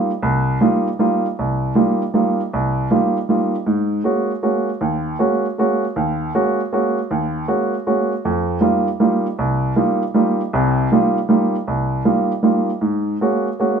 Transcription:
grand piano
Already playing: D#4 F4
0.22 C2
0.61 G3 A#3 D#4 F4
0.99 G3 A#3 D#4 F4
1.39 C2
1.75 G3 A#3 D#4 F4
2.14 G3 A#3 D#4 F4
2.53 C2
2.91 G3 A#3 D#4 F4
3.29 G3 A#3 D#4 F4
3.67 G#2
4.04 G#3 A#3 C#4 F#4
4.43 G#3 A#3 C#4 F#4
4.81 D#2
5.19 G#3 A#3 C#4 F#4
5.58 G#3 A#3 C#4 F#4
5.96 D#2
6.35 G#3 A#3 C#4 F#4
6.73 G#3 A#3 C#4 F#4
7.11 D#2
7.48 G#3 A#3 C#4 F#4
7.87 G#3 A#3 C#4 F#4
8.25 F2
8.61 G3 A#3 D#4 F4
9.00 G3 A#3 D#4 F4
9.39 C2
9.76 G3 A#3 D#4 F4
10.14 G3 A#3 D#4 F4
10.53 C2 C3
10.92 G3 A#3 D#4 F4
11.29 G3 A#3 D#4 F4
11.67 C2
12.05 G3 A#3 D#4 F4
12.43 G3 A#3 D#4 F4
12.81 G#2
13.21 G#3 A#3 C#4 F#4
13.60 G#3 A#3 C#4 F#4

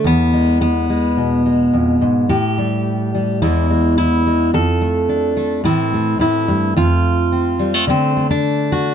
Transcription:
steel-string acoustic guitar
0.04 E2 B3
0.33 G#3
0.61 B3
0.90 G#3
1.17 B2
1.46 G#3
1.73 F2
2.01 G#2
2.29 A2 G4
2.58 G3
3.15 G3
3.42 E2 E3 G#3 B3 E4
3.70 G#3
3.98 E4
4.27 G#3
4.54 F2 A4
4.82 A3
5.09 D4
5.37 A3
5.64 A2 E3 A3 C4 E4
5.94 A3
6.19 A2 E4
6.48 G2
6.77 F2 F4
7.32 C4
7.59 G3
7.74 A3
7.87 D3 A3 C4
8.17 A3
8.31 D4
8.72 F#4

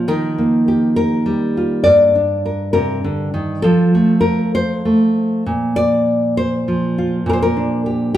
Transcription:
nylon-string guitar
Already playing: F3
0.08 D#3 A#4
0.38 A#3
0.68 G4
0.96 A#4
1.26 G3
1.57 F4
1.84 G2 D5
2.15 D4
2.46 A#4
2.73 C3 A#4
3.04 D3
3.34 D#3
3.62 F3 A4
3.95 A3
4.21 A#4
4.55 C5
4.85 A3
5.46 A#2
5.76 D5
6.37 C5
6.68 F3
6.98 F4
7.26 A#2 A#4
7.33 C5
7.42 A#4
7.57 D4
7.86 G4

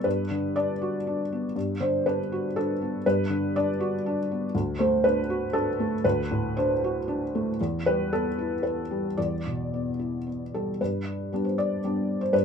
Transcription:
felt piano
Already playing: B3
0.04 G2 B4
0.31 D3
0.56 D4 D5
0.82 F#4
1.07 D4
1.32 B3
1.56 G2
1.80 D3 C5
2.06 D4 B4
2.32 F#4
2.56 D4 A4
2.82 B3
3.06 G2 B4
3.30 D3
3.56 D4 D5
3.80 F#4
4.06 D4
4.31 B3
4.55 D2
4.79 A3 C5
5.04 D4 B4
5.30 F#4
5.53 D4 A4
5.80 A3
6.04 D2 B4
6.31 A2
6.57 D4 C5
6.84 F#4
7.08 D4
7.35 A3
7.61 E2
7.86 G3 B4
8.13 B3 A4
8.39 E4
8.63 B3 B4
8.91 G3
9.17 E2 D5
9.47 B2
9.74 B3
9.99 E4
10.27 B3
10.54 G3 A4
10.81 G2 B4
11.32 G3 B3 D4
11.44 C5
11.58 D5
11.84 G3 B3 D4
12.21 C5
12.33 G2 B4

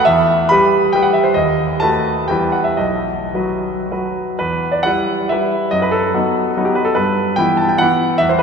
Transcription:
grand piano
0.05 E2 E5
0.49 G3 G4 B4 B5
0.93 G3 G4 B4 G5
1.03 F#5
1.13 E5
1.24 C5
1.34 D#2 D#5
1.80 A3 F#4 B4 A5
2.28 E2 G3 E4 B4 G5
2.52 F#5
2.64 E5
2.77 B1 D#5
3.34 F#3 F#4 B4
3.91 F#3 F#4 B4
4.39 E2 B4
4.72 D5
4.83 G3 E4 B4 F#5
5.29 G3 E4 B4 E5
5.71 F#2 D#5
5.82 B4
5.91 A4
6.14 F#3 B3 D#4
6.57 F#3 B3 D#4
6.65 G4
6.75 B4
6.85 A4
6.95 G2 B4
7.36 E3 B3 E4 G5
7.57 A5
7.69 G5
7.78 E3 B3 E4 F#5
8.18 E2 E5
8.29 C5
8.39 B4

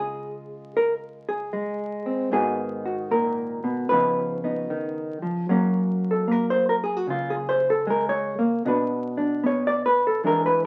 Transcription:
hollow-body jazz guitar
Already playing: C#3 G#3 F4 G#4
0.77 A#4
1.29 G#4
1.53 G#3
2.06 C4
2.31 G#2 D#3 B3 F#4 G#4
2.86 F#4
3.11 A#2 A#4
3.64 B2
3.89 C#3 F3 B3 D#4 B4
4.44 B3 D#4
4.70 D#3
5.22 F3
5.49 F#3 A#3 C#4
6.11 A4
6.28 A#3 A#4
6.50 C5
6.69 A#4
6.84 G#4
6.97 F#4
7.07 C#3 F4
7.30 G#4
7.49 C5
7.70 A4
7.87 G#3 A#4
8.09 C#5
8.39 A#3
8.65 B2 B3 D4 F#4 B4
9.17 D4
9.44 B3 C#5
9.67 D5
9.86 B4
10.07 A4
10.24 E3 G#3 D4 E4 A#4
10.46 B4

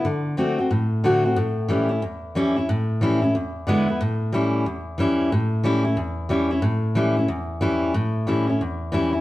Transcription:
steel-string acoustic guitar
0.05 D3
0.37 D3 A3 C4 F#4
0.58 C4 F#4
0.71 A2
1.04 D3 A3 C4 F#4
1.25 C4 F#4
1.36 A2
1.68 E3 G3 C#4 E4
1.89 C#4 E4
2.02 E2
2.35 E3 G3 C#4 E4
2.56 E4
2.69 A2
3.01 E3 G3 C#4 E4
3.22 C#4 E4
3.35 E2
3.67 D3 G#3 B3 E4
3.88 B3 E4
4.01 A2
4.32 E3 G3 C#4 E4
4.66 E2
4.98 E3 G3 C#4 E4
5.32 A2
5.63 E3 G3 C#4 E4
5.84 C#4 E4
5.97 E2
6.29 E3 G3 C#4 E4
6.51 C#4 E4
6.62 A2
6.95 E3 G3 C#4 E4
7.17 C#4 E4
7.28 E2
7.61 E3 G3 C#4 E4
7.94 A2
8.27 E3 G3 C#4 E4
8.47 C#4 E4
8.61 E2
8.92 E3 G3 C#4 E4
9.13 C#4 E4

